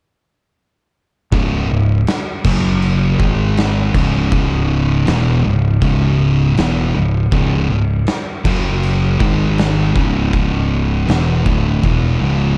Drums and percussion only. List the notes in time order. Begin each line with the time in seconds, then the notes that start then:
1.32 kick, crash
2.07 snare, crash
2.44 kick, crash
2.82 crash
3.20 kick
3.57 snare, crash
3.94 kick, crash
4.32 kick, crash
5.07 snare, crash
5.82 kick, crash
6.57 snare, crash
7.32 kick, crash
8.07 snare, crash
8.45 kick, crash
8.83 crash
9.20 kick
9.58 snare, crash
9.96 kick
10.33 kick, crash
11.08 snare, crash
11.46 kick
11.84 kick, crash